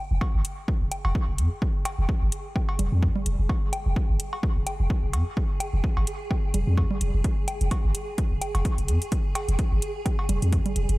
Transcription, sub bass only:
0.11 F1
0.34 G#1
0.81 F1
1.05 F1
1.28 F1
1.38 F2
1.99 F1
2.22 G#1
2.79 F1
2.92 F2
3.26 F1
3.39 F1
3.86 F1
4.09 G#1
4.56 F1
4.80 F1
5.03 F1
5.13 F2
5.73 F1
5.97 G#1
6.54 F1
6.67 F2
7.01 F1
7.14 F1
7.61 F1
7.84 G#1
8.31 F1
8.55 F1
8.78 F1
8.88 F2
9.49 F1
9.72 G#1
10.29 F1
10.42 F2
10.76 F1
10.89 F1

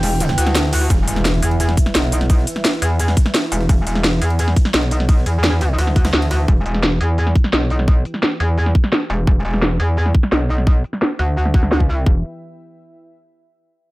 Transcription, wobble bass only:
Already playing: E1
0.38 D2
0.90 E1
1.08 E1
1.42 E2
1.95 B1
2.82 E2
3.52 E1
3.87 E1
4.22 E2
4.74 B1
5.26 E2
5.79 D2
6.13 D2
6.48 E1
6.66 E1
7.01 E2
7.53 B1
8.40 E2
9.10 E1
9.27 E1
9.45 E1
9.80 E2
10.32 B1
11.19 D2
11.80 C#2
12.06 E1

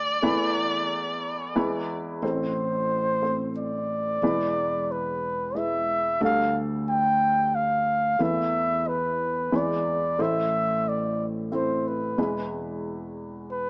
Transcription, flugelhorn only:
2.25 C5
3.58 D5
4.92 B4
5.57 E5
6.25 F5
6.89 G5
7.55 F5
8.23 E5
8.88 B4
9.56 D5
10.22 E5
10.89 D5
11.55 C5
11.88 B4
13.52 B4

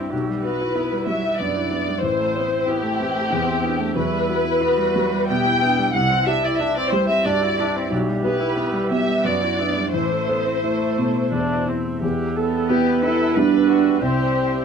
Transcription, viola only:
Already playing: C4
0.12 F#3
0.29 G3
0.44 B3
0.61 E4
0.76 B3
0.92 G3
1.07 F#3
1.24 G3
1.39 B3
1.56 E4
1.72 B3
1.88 G3
2.04 E3
2.19 A3
2.36 B3
2.52 C4
2.68 B3
2.83 A3
3.00 E3
3.15 A3
3.32 B3
3.47 C4
3.63 B3
3.79 A3
3.96 F#3
4.12 G3
4.28 B3
4.45 E4
4.61 B3
4.77 G3
4.95 F#3
5.12 G3
5.29 B3
5.46 E4
5.62 B3
5.78 G3
5.94 G3
6.11 C4
6.27 D4
6.44 E4
6.60 D4
6.77 C4
6.93 G3
7.10 C4
7.26 D4
7.43 E4
7.60 D4
7.76 C4
7.92 F#3
8.09 G3
8.25 B3
8.40 E4
8.56 B3
8.73 G3
8.90 F#3
9.07 G3
9.24 B3
9.41 E4
9.60 B3
9.77 G3
9.93 E3
10.12 A3
10.29 B3
10.46 C4
10.64 A3
11.33 D4
11.68 C4
12.03 G4
12.37 A4
12.69 B4
13.36 B4
14.01 C5

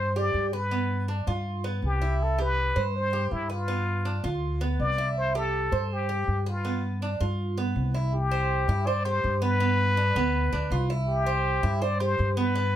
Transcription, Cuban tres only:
Already playing: C5
0.16 G4
0.53 B4
0.71 B3
1.08 D4
1.27 F4
1.64 B3
2.02 E4
2.38 G4
2.76 C5
3.13 G4
3.50 B4
3.68 B3
4.05 D4
4.24 F4
4.61 B3
4.98 E4
5.35 G4
5.72 C5
6.09 G4
6.46 B4
6.65 B3
7.02 D4
7.21 F4
7.58 B3
7.94 E4
8.31 C5
8.69 E4
8.87 C5
9.05 G4
9.42 B3
9.60 B3
9.97 D4
10.16 B3
10.53 D4
10.72 F4
10.90 E4
11.26 C5
11.63 E4
11.82 C5
12.00 G4
12.37 B3
12.55 B3

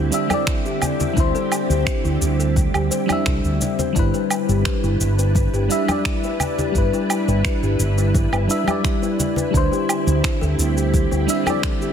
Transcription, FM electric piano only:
Already playing: G3 D4 E4 C5
0.11 G3 D4 E4 E5
0.27 G3 D4
0.32 E4 D5
1.14 G3 D4
1.18 E4 C5
3.06 G3 D4
3.10 E4 E5
3.93 G3 D4
3.97 E4 B4
5.68 G3 D4 E4 E5
5.85 G3 D4
5.90 E4 D5
6.72 G3 D4
6.76 E4 B4
8.48 G3 D4 E4 E5
8.64 G3 D4
8.68 E4 D5
9.51 G3 D4
9.55 E4 C5
11.27 G3 D4 E4 E5
11.44 G3 D4
11.48 E4 D5

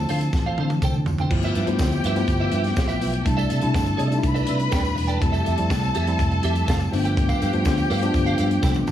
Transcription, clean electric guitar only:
0.09 A4 C5 F5
0.22 muted clean electric guitar stroke
0.34 muted clean electric guitar stroke
0.46 A4 C5 F5
0.59 A4 C5 F5
0.72 muted clean electric guitar stroke
0.83 A4 C5 G5
0.96 muted clean electric guitar stroke
1.08 muted clean electric guitar stroke
1.20 A4 C5 G5
1.32 muted clean electric guitar stroke
1.44 F4 B4 E5
1.55 F4 B4 E5
1.68 muted clean electric guitar stroke
1.92 muted clean electric guitar stroke
2.05 F4 B4 E5
2.17 muted clean electric guitar stroke
2.29 muted clean electric guitar stroke
2.40 F4 B4 E5
2.52 F4 B4 E5
2.64 muted clean electric guitar stroke
2.77 muted clean electric guitar stroke
2.88 F4 B4 E5
3.00 F4 B4 E5
3.13 muted clean electric guitar stroke
3.26 muted clean electric guitar stroke
3.37 A4 D5 E5
3.49 A4 D5 E5
3.62 muted clean electric guitar stroke
3.85 muted clean electric guitar stroke
3.97 A4 D5 E5
4.10 muted clean electric guitar stroke
4.22 muted clean electric guitar stroke
4.34 A4 D5 E5
4.46 A4 D5 E5
4.59 muted clean electric guitar stroke
4.71 A4 D5 G5
4.83 muted clean electric guitar stroke
4.95 muted clean electric guitar stroke
5.07 A4 D5 G5
5.20 muted clean electric guitar stroke
5.32 G4 A4 E5
5.44 G4 A4 E5
5.57 muted clean electric guitar stroke
5.82 muted clean electric guitar stroke
5.95 G4 A4 E5
6.07 muted clean electric guitar stroke
6.19 muted clean electric guitar stroke
6.31 muted clean electric guitar stroke
6.44 G4 A4 E5
6.55 G4 A4 E5
6.68 G4 A4 F5
6.80 muted clean electric guitar stroke
6.93 muted clean electric guitar stroke
7.04 A4 B4 G5
7.16 muted clean electric guitar stroke
7.29 A4 B4 F5
7.41 A4 B4 F5
7.53 muted clean electric guitar stroke
7.78 muted clean electric guitar stroke
7.90 A4 B4 F5
8.02 muted clean electric guitar stroke
8.15 muted clean electric guitar stroke
8.26 A4 B4 F5
8.38 A4 B4 F5
8.51 muted clean electric guitar stroke
8.62 A4 B4 G5
8.74 muted clean electric guitar stroke
8.87 muted clean electric guitar stroke

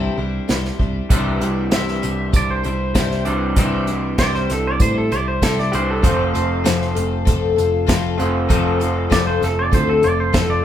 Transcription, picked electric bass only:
0.18 C2
0.50 C2
0.80 C2
1.10 C2
1.41 C2
1.72 C2
2.04 C2
2.33 C2
2.65 C2
2.95 C2
3.27 C2
3.57 C2
4.18 C2
4.50 C2
4.80 A2
5.12 C2
5.42 C2
5.74 C2
6.03 F1
6.35 F1
6.66 F1
6.96 F1
7.27 F1
7.58 F1
7.88 F1
8.19 F1
8.50 F1
9.11 F1
9.42 F1
9.73 D2
10.03 F1
10.34 F1

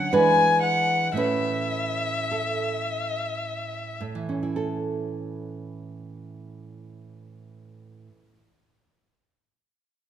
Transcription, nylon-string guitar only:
Already playing: C#5
0.13 E3 G#3 D4 B4
1.13 A2 A3 C#4
1.17 B4
2.31 A4
4.01 A2
4.15 E3
4.29 C#4
4.43 E4
4.56 A4

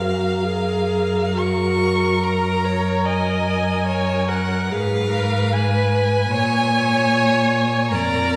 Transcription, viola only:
0.01 F#4
0.44 G#4
1.37 F#4
2.25 A#4
2.65 C#5
3.06 D#5
3.87 C#5
4.29 A#4
4.71 G#4
5.09 A#4
5.52 B4
6.31 C#5
7.92 A#4

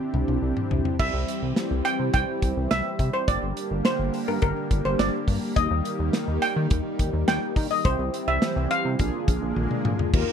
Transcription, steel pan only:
0.99 E5
1.85 G5
2.14 G5
2.71 E5
3.14 C5
3.28 D5
3.85 C5
4.28 A#4
4.42 A#4
4.85 C5
4.99 D5
5.56 D#5
6.42 G5
7.28 G5
7.71 D#5
7.85 C5
8.28 E5
8.71 F5

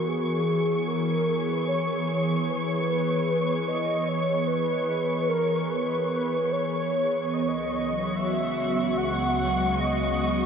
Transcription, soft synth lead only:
0.08 G#4
0.88 A#4
1.47 B4
1.68 C#5
2.49 B4
3.68 D#5
4.08 C#5
4.47 B4
5.29 A#4
5.70 B4
6.52 C#5
7.34 D#5
7.41 C#5
7.48 D#5
8.16 E5
8.98 F#5
9.79 D#5

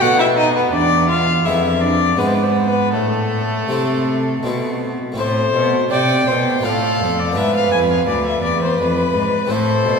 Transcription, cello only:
0.01 B2
0.73 E2
1.45 F2
2.18 G#2
2.93 A2
3.68 C3
4.43 B2
5.17 A2
5.54 B2
5.92 C3
6.28 B2
6.64 A2
7.00 F2
7.36 G#2
7.72 F2
8.07 D2
8.42 E2
8.78 F2
9.13 G#2
9.49 A2
9.85 B2

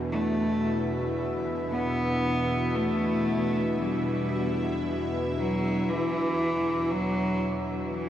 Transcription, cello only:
0.11 A3
1.72 B3
2.75 A3
3.80 G3
5.38 F#3
5.89 E3
6.91 F#3
7.95 E3

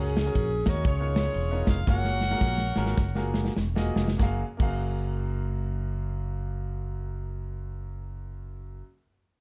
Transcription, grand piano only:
Already playing: C#3 F#4 A#4 C#5
0.25 F#4 A#4 C#5
0.66 F#4 A#4 D#5
0.84 C#3
1.00 B3 D#4 F4 A#4 C#5
1.51 B3 D#4 F4 A#4 C#5
1.87 A#3 F4 F#4 G#4 C#5
2.30 A#3 F4 F#4 G#4 A#4
2.76 A#3 F4 F#4 G#4 A#4
3.15 A#3 F4 F#4 G#4 A#4
3.75 A#3 F4 F#4 G#4 D#5
4.17 F#2 A#3 F#4 G#4
4.23 F5
4.57 F#2 A#3 F#4 G#4
4.63 F5

